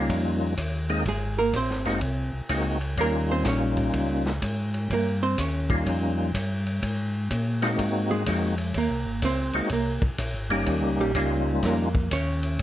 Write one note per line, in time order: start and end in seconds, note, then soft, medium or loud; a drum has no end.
0.00 0.54 G3 medium
0.00 0.38 A#3 medium
0.00 0.54 A#3 medium
0.00 0.54 C#4 medium
0.00 0.54 D#4 medium
0.00 0.55 F4 medium
0.00 0.37 A#4 medium
0.09 0.56 F2 medium
0.09 kick soft
0.09 ride medium
0.57 1.04 D#2 medium
0.57 kick soft
0.57 hi-hat pedal medium
0.57 ride medium
0.89 1.04 G#3 medium
0.89 1.04 A#3 medium
0.89 1.04 C4 medium
0.89 1.05 D#4 medium
0.89 1.04 G#4 medium
0.89 ride soft
1.05 1.52 G#1 medium
1.05 1.38 G#3 medium
1.05 1.38 G#4 medium
1.05 kick soft
1.05 ride medium
1.39 1.54 A#3 medium
1.39 1.54 A#4 loud
1.53 1.69 A#1 loud
1.53 2.31 C4 medium
1.53 2.30 C5 medium
1.53 kick soft
1.53 hi-hat pedal soft
1.53 ride medium
1.70 1.86 G#1 medium
1.70 snare soft
1.85 2.01 F#1 medium
1.85 2.00 G#3 medium
1.85 2.00 A#3 medium
1.85 2.00 C4 medium
1.85 2.01 D#4 medium
1.85 2.01 F#4 medium
1.85 snare soft
1.85 ride soft
2.01 2.31 C2 medium
2.01 kick soft
2.01 ride medium
2.33 2.41 C2 soft
2.49 2.96 C#2 medium
2.49 2.78 G#3 medium
2.49 2.78 A#3 medium
2.49 2.78 C4 medium
2.49 2.78 D#4 medium
2.49 2.78 F#4 medium
2.49 kick soft
2.49 hi-hat pedal medium
2.49 ride medium
2.81 ride soft
2.97 3.44 D#2 medium
2.97 4.32 G3 medium
2.97 4.32 A#3 medium
2.97 3.30 A#3 medium
2.97 4.32 C#4 medium
2.97 4.32 D#4 medium
2.97 4.32 F4 medium
2.97 3.30 A#4 medium
2.97 kick soft
2.97 ride medium
3.31 3.46 C4 medium
3.31 3.46 C5 medium
3.45 3.92 A#1 loud
3.45 4.23 C#4 medium
3.45 4.22 C#5 medium
3.45 kick soft
3.45 snare soft
3.45 hi-hat pedal medium
3.45 ride medium
3.77 kick soft
3.77 ride soft
3.93 4.40 C#2 medium
3.93 kick soft
3.93 ride medium
4.26 snare soft
4.42 4.88 G#2 medium
4.42 kick soft
4.42 hi-hat pedal medium
4.42 ride medium
4.74 ride soft
4.90 5.36 G2 medium
4.90 5.22 A#3 medium
4.90 5.22 A#4 medium
4.90 kick soft
4.90 ride medium
5.23 5.38 C4 medium
5.23 5.38 C5 medium
5.38 5.85 D#2 medium
5.38 6.15 C#4 medium
5.38 6.15 C#5 medium
5.38 kick soft
5.38 hi-hat pedal medium
5.38 ride medium
5.70 6.31 G3 medium
5.70 6.31 A#3 medium
5.70 6.31 C#4 medium
5.70 6.31 D#4 medium
5.70 6.31 F4 medium
5.70 kick soft
5.70 ride soft
5.86 6.33 F2 medium
5.86 kick soft
5.86 ride medium
6.34 6.81 G2 medium
6.34 kick soft
6.34 hi-hat pedal medium
6.34 ride medium
6.66 ride soft
6.83 7.29 G#2 medium
6.83 kick soft
6.83 ride medium
7.30 7.77 A#2 medium
7.30 kick soft
7.30 hi-hat pedal medium
7.30 ride medium
7.62 8.24 G#3 medium
7.62 8.23 A#3 medium
7.62 8.24 C4 medium
7.62 8.24 D#4 medium
7.62 8.24 F#4 loud
7.62 snare soft
7.62 ride soft
7.79 8.25 G#2 medium
7.79 kick soft
7.79 ride medium
8.11 8.71 G#3 medium
8.11 8.71 G#4 medium
8.26 8.73 F2 medium
8.26 8.55 G#3 medium
8.26 8.55 A#3 medium
8.26 8.55 C4 medium
8.26 8.55 D#4 medium
8.26 8.56 F#4 medium
8.26 kick soft
8.26 hi-hat pedal medium
8.26 ride medium
8.58 ride medium
8.74 8.90 D#2 medium
8.74 9.21 A#3 medium
8.74 9.21 A#4 medium
8.74 kick soft
8.74 ride medium
8.90 9.06 C2 medium
9.06 9.21 G#1 medium
9.22 9.52 C#2 medium
9.22 9.69 C4 medium
9.22 9.68 C5 medium
9.22 kick soft
9.22 hi-hat pedal medium
9.22 ride medium
9.53 9.62 C#2 soft
9.53 9.69 G#3 medium
9.53 9.69 A#3 medium
9.53 9.69 C4 medium
9.53 9.70 D#4 medium
9.53 9.69 F#4 medium
9.53 ride soft
9.69 10.00 C2 medium
9.69 10.02 A#3 medium
9.69 10.02 A#4 medium
9.69 kick soft
9.69 ride medium
10.02 10.10 C2 soft
10.02 kick medium
10.18 10.34 A#1 loud
10.18 kick soft
10.18 hi-hat pedal medium
10.18 ride medium
10.34 10.51 G#1 soft
10.49 10.65 F#1 medium
10.49 11.12 G3 medium
10.49 11.12 A#3 medium
10.49 11.12 C#4 medium
10.49 11.12 D#4 medium
10.49 11.12 G4 loud
10.49 ride soft
10.66 10.82 D#2 medium
10.66 kick soft
10.66 ride medium
10.82 10.99 C#2 medium
10.98 11.14 A#1 medium
10.98 11.60 G3 soft
10.98 11.60 G4 medium
11.15 11.62 C#2 loud
11.15 11.89 G3 medium
11.15 11.89 A#3 medium
11.15 11.89 C#4 medium
11.15 11.89 D#4 medium
11.15 11.89 F4 medium
11.15 kick soft
11.15 hi-hat pedal medium
11.15 ride medium
11.62 12.10 F2 medium
11.62 12.10 A#3 medium
11.62 12.09 A#4 medium
11.62 kick soft
11.62 snare soft
11.62 ride medium
11.95 kick medium
12.11 12.58 D#2 loud
12.11 12.57 C#4 medium
12.11 12.57 C#5 loud
12.11 kick soft
12.11 hi-hat pedal medium
12.11 ride medium
12.43 ride medium
12.59 12.62 G2 medium
12.59 ride medium